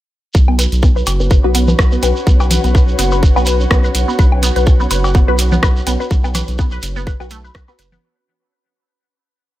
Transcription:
0.34 B1 C#4 F#4 C#5, kick, shekere
0.48 B3, low woodblock
0.59 B4, open hi-hat, shekere
0.72 B1, open hi-hat, shekere
0.83 B3, kick, shekere
0.96 B4 F#5, shekere
1.06 F#1, open hi-hat, cowbell, shekere
1.20 B3, shekere
1.31 B4, kick, shekere
1.44 B1 B3 F#4 B4
1.55 B3, open hi-hat, shekere
1.68 B4, low conga, shekere
1.79 B1, kick, cross-stick, shekere
1.92 B3, shekere
2.03 B1 B4, open hi-hat, low woodblock, shekere
2.16 shekere
2.27 B1 B3, kick, shekere
2.40 B4, cowbell, low woodblock, shekere
2.51 open hi-hat, low conga, shekere
2.64 B1 B3, open hi-hat, shekere
2.75 B4, kick, shekere
2.88 shekere
2.99 F#1 B3, open hi-hat, shekere
3.11 B4, shekere
3.23 kick, shekere
3.36 B1 B3 F#4 B4, low woodblock, shekere
3.46 B4, open hi-hat, shekere
3.60 shekere
3.71 B1 B3, kick, cross-stick, cowbell, shekere
3.84 B4, shekere
3.95 B1, open hi-hat, shekere
4.08 B3, shekere
4.19 B1 B4, kick, shekere
4.32 low woodblock
4.43 B3, open hi-hat, shekere
4.56 B1 B4, open hi-hat, shekere
4.66 kick, shekere
4.80 B3, shekere
4.91 F#1 B4, open hi-hat, shekere
5.04 cowbell, shekere
5.14 B3, kick, shekere
5.28 B1 B3 F#4 B4
5.39 open hi-hat, shekere
5.52 B3, low conga, shekere
5.63 B1 B4, kick, cross-stick, shekere
5.76 shekere
5.87 B1 B3, open hi-hat, low woodblock, shekere
6.00 B4, shekere
6.11 B1, kick, shekere
6.24 B3, low woodblock, shekere
6.35 B4, open hi-hat, cowbell, low conga, shekere
6.48 B1, open hi-hat, shekere
6.58 B3, kick, shekere
6.71 B4, shekere
6.82 F#1, open hi-hat, shekere
6.96 B3, shekere
7.07 B4, kick, shekere
7.20 B1 B3 F#4 B4, low woodblock, shekere
7.30 A3, open hi-hat, shekere
7.44 B4, shekere
7.55 B1 B4, kick, cross-stick, shekere
7.68 B3 F#4 B4, cowbell, shekere
7.79 F#1 B4, open hi-hat, shekere
7.92 B3, low conga, shekere

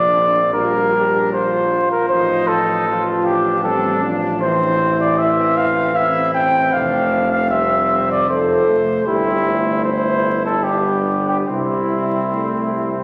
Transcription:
Already playing: A#1 F3 D4 D5
0.14 C4
0.53 G3 A#3 F4 A#4
0.93 D4 G4
1.32 F4 C5
1.91 A#4
2.09 A1 F3 D#4 C5
2.48 A4
2.87 F3 F4
3.24 D4 G4
3.64 G3 C4 A4
4.03 F3 D4
4.41 E3 C4 E4 C5
5.00 D5
5.18 C4 E5
5.57 F5
5.96 C4 E4 E5
6.34 G5
6.73 F1 A3 D4 F5
7.32 F5
7.50 G3 C4 E5
8.11 D5
8.29 F3 A4 C5
8.67 A3
9.06 G1 G3 C4 E4 G4
9.45 A3
9.84 E4 C5
10.45 A4
10.63 G3 B3 D4 G4
11.28 G4
11.47 C2 G3 C4 E4
12.32 A3
12.73 G3

